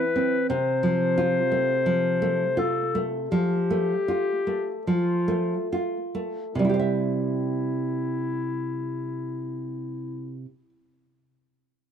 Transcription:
0, 0, Header, 1, 3, 480
1, 0, Start_track
1, 0, Key_signature, 0, "major"
1, 0, Tempo, 1354402
1, 180, Time_signature, 4, 2, 24, 8
1, 663, Tempo, 1449275
1, 1143, Tempo, 1542416
1, 1623, Tempo, 1675978
1, 2103, Tempo, 1604278
1, 3063, Tempo, 1570681
1, 3727, End_track
2, 0, Start_track
2, 0, Title_t, "Clarinet"
2, 0, Program_c, 0, 71
2, 0, Note_on_c, 0, 71, 54
2, 173, Note_off_c, 0, 71, 0
2, 175, Note_on_c, 0, 72, 69
2, 899, Note_on_c, 0, 69, 53
2, 904, Note_off_c, 0, 72, 0
2, 1057, Note_off_c, 0, 69, 0
2, 1138, Note_on_c, 0, 67, 63
2, 1608, Note_off_c, 0, 67, 0
2, 1625, Note_on_c, 0, 65, 48
2, 1860, Note_off_c, 0, 65, 0
2, 2104, Note_on_c, 0, 64, 39
2, 3274, Note_off_c, 0, 64, 0
2, 3727, End_track
3, 0, Start_track
3, 0, Title_t, "Nylon-string guitar"
3, 0, Program_c, 1, 24
3, 0, Note_on_c, 1, 64, 37
3, 56, Note_on_c, 1, 60, 36
3, 129, Note_off_c, 1, 64, 0
3, 176, Note_on_c, 1, 48, 44
3, 177, Note_off_c, 1, 60, 0
3, 294, Note_on_c, 1, 53, 36
3, 417, Note_on_c, 1, 65, 38
3, 489, Note_off_c, 1, 53, 0
3, 538, Note_on_c, 1, 57, 36
3, 613, Note_off_c, 1, 65, 0
3, 659, Note_on_c, 1, 53, 38
3, 732, Note_off_c, 1, 57, 0
3, 778, Note_on_c, 1, 57, 37
3, 850, Note_off_c, 1, 53, 0
3, 894, Note_on_c, 1, 65, 40
3, 971, Note_off_c, 1, 57, 0
3, 1020, Note_on_c, 1, 57, 38
3, 1091, Note_off_c, 1, 65, 0
3, 1128, Note_off_c, 1, 48, 0
3, 1142, Note_on_c, 1, 53, 39
3, 1212, Note_off_c, 1, 57, 0
3, 1263, Note_on_c, 1, 57, 36
3, 1330, Note_off_c, 1, 53, 0
3, 1381, Note_on_c, 1, 65, 35
3, 1452, Note_off_c, 1, 57, 0
3, 1501, Note_on_c, 1, 57, 35
3, 1574, Note_off_c, 1, 65, 0
3, 1626, Note_on_c, 1, 53, 36
3, 1694, Note_off_c, 1, 57, 0
3, 1742, Note_on_c, 1, 57, 35
3, 1816, Note_off_c, 1, 53, 0
3, 1870, Note_on_c, 1, 65, 34
3, 1939, Note_off_c, 1, 57, 0
3, 1991, Note_on_c, 1, 57, 29
3, 2060, Note_off_c, 1, 65, 0
3, 2105, Note_off_c, 1, 57, 0
3, 2107, Note_on_c, 1, 48, 32
3, 2119, Note_on_c, 1, 55, 28
3, 2135, Note_on_c, 1, 64, 26
3, 2150, Note_on_c, 1, 67, 27
3, 2162, Note_off_c, 1, 64, 0
3, 2163, Note_on_c, 1, 72, 28
3, 2178, Note_off_c, 1, 72, 0
3, 2180, Note_on_c, 1, 76, 28
3, 3278, Note_off_c, 1, 48, 0
3, 3290, Note_off_c, 1, 55, 0
3, 3321, Note_off_c, 1, 67, 0
3, 3352, Note_off_c, 1, 76, 0
3, 3727, End_track
0, 0, End_of_file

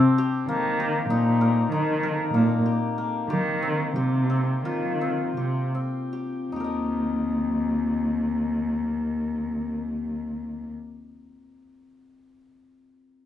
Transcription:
0, 0, Header, 1, 4, 480
1, 0, Start_track
1, 0, Key_signature, -3, "major"
1, 0, Tempo, 619195
1, 378, Time_signature, 9, 3, 24, 8
1, 2303, Tempo, 665188
1, 3263, Tempo, 704225
1, 3743, Tempo, 758534
1, 4703, Tempo, 802139
1, 8734, End_track
2, 0, Start_track
2, 0, Title_t, "Hammered dulcimer"
2, 0, Program_c, 0, 15
2, 0, Note_on_c, 0, 60, 67
2, 0, Note_on_c, 0, 67, 80
2, 0, Note_on_c, 0, 69, 90
2, 138, Note_off_c, 0, 67, 0
2, 141, Note_on_c, 0, 67, 75
2, 376, Note_on_c, 0, 58, 67
2, 423, Note_off_c, 0, 69, 0
2, 616, Note_off_c, 0, 67, 0
2, 619, Note_on_c, 0, 67, 65
2, 855, Note_on_c, 0, 63, 68
2, 1094, Note_on_c, 0, 70, 57
2, 1330, Note_off_c, 0, 63, 0
2, 1333, Note_on_c, 0, 63, 64
2, 1573, Note_off_c, 0, 70, 0
2, 1576, Note_on_c, 0, 70, 57
2, 1812, Note_off_c, 0, 58, 0
2, 1815, Note_on_c, 0, 58, 58
2, 2056, Note_off_c, 0, 67, 0
2, 2059, Note_on_c, 0, 67, 52
2, 2306, Note_off_c, 0, 58, 0
2, 2309, Note_on_c, 0, 58, 56
2, 2537, Note_off_c, 0, 67, 0
2, 2540, Note_on_c, 0, 67, 66
2, 2772, Note_off_c, 0, 60, 0
2, 2775, Note_on_c, 0, 60, 57
2, 3012, Note_off_c, 0, 67, 0
2, 3015, Note_on_c, 0, 67, 60
2, 3258, Note_off_c, 0, 60, 0
2, 3260, Note_on_c, 0, 60, 53
2, 3502, Note_on_c, 0, 65, 60
2, 3645, Note_off_c, 0, 70, 0
2, 3745, Note_off_c, 0, 60, 0
2, 3748, Note_on_c, 0, 60, 53
2, 3945, Note_off_c, 0, 63, 0
2, 3972, Note_off_c, 0, 67, 0
2, 3974, Note_on_c, 0, 67, 52
2, 4209, Note_off_c, 0, 60, 0
2, 4212, Note_on_c, 0, 60, 44
2, 4450, Note_off_c, 0, 67, 0
2, 4453, Note_on_c, 0, 67, 48
2, 4703, Note_on_c, 0, 63, 46
2, 4724, Note_off_c, 0, 67, 0
2, 4727, Note_on_c, 0, 67, 42
2, 4750, Note_on_c, 0, 70, 44
2, 4775, Note_on_c, 0, 75, 43
2, 5148, Note_off_c, 0, 58, 0
2, 5596, Note_off_c, 0, 65, 0
2, 6632, Note_off_c, 0, 60, 0
2, 7211, Note_off_c, 0, 63, 0
2, 7235, Note_off_c, 0, 67, 0
2, 7258, Note_off_c, 0, 70, 0
2, 7283, Note_off_c, 0, 75, 0
2, 8734, End_track
3, 0, Start_track
3, 0, Title_t, "French horn"
3, 0, Program_c, 1, 60
3, 0, Note_on_c, 1, 60, 104
3, 111, Note_off_c, 1, 60, 0
3, 8734, End_track
4, 0, Start_track
4, 0, Title_t, "Cello"
4, 0, Program_c, 2, 42
4, 378, Note_on_c, 2, 51, 83
4, 820, Note_off_c, 2, 51, 0
4, 850, Note_on_c, 2, 46, 80
4, 1295, Note_off_c, 2, 46, 0
4, 1330, Note_on_c, 2, 51, 81
4, 1780, Note_off_c, 2, 51, 0
4, 1814, Note_on_c, 2, 46, 72
4, 2033, Note_off_c, 2, 46, 0
4, 2540, Note_on_c, 2, 51, 79
4, 2989, Note_off_c, 2, 51, 0
4, 3022, Note_on_c, 2, 48, 72
4, 3475, Note_off_c, 2, 48, 0
4, 3504, Note_on_c, 2, 51, 67
4, 3950, Note_off_c, 2, 51, 0
4, 3976, Note_on_c, 2, 48, 65
4, 4189, Note_off_c, 2, 48, 0
4, 4703, Note_on_c, 2, 39, 56
4, 7211, Note_off_c, 2, 39, 0
4, 8734, End_track
0, 0, End_of_file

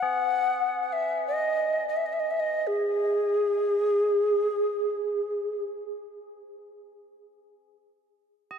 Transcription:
0, 0, Header, 1, 3, 480
1, 0, Start_track
1, 0, Tempo, 500000
1, 8243, End_track
2, 0, Start_track
2, 0, Title_t, "Native American-style wooden flute"
2, 0, Program_c, 0, 77
2, 0, Note_on_c, 0, 78, 96
2, 799, Note_off_c, 0, 78, 0
2, 799, Note_on_c, 0, 78, 58
2, 890, Note_on_c, 0, 76, 83
2, 904, Note_off_c, 0, 78, 0
2, 1220, Note_off_c, 0, 76, 0
2, 1226, Note_on_c, 0, 75, 79
2, 1784, Note_off_c, 0, 75, 0
2, 1810, Note_on_c, 0, 75, 66
2, 1887, Note_on_c, 0, 76, 65
2, 1902, Note_off_c, 0, 75, 0
2, 1978, Note_on_c, 0, 75, 67
2, 1992, Note_off_c, 0, 76, 0
2, 2043, Note_on_c, 0, 76, 69
2, 2057, Note_off_c, 0, 75, 0
2, 2110, Note_on_c, 0, 75, 68
2, 2125, Note_off_c, 0, 76, 0
2, 2216, Note_on_c, 0, 76, 65
2, 2231, Note_off_c, 0, 75, 0
2, 2303, Note_on_c, 0, 75, 72
2, 2317, Note_off_c, 0, 76, 0
2, 2564, Note_on_c, 0, 68, 83
2, 2578, Note_off_c, 0, 75, 0
2, 5421, Note_off_c, 0, 68, 0
2, 8243, End_track
3, 0, Start_track
3, 0, Title_t, "Tubular bells"
3, 0, Program_c, 1, 14
3, 0, Note_on_c, 1, 73, 36
3, 24, Note_on_c, 1, 68, 49
3, 191, Note_off_c, 1, 73, 0
3, 7402, Note_off_c, 1, 68, 0
3, 8168, Note_on_c, 1, 75, 42
3, 8243, Note_off_c, 1, 75, 0
3, 8243, End_track
0, 0, End_of_file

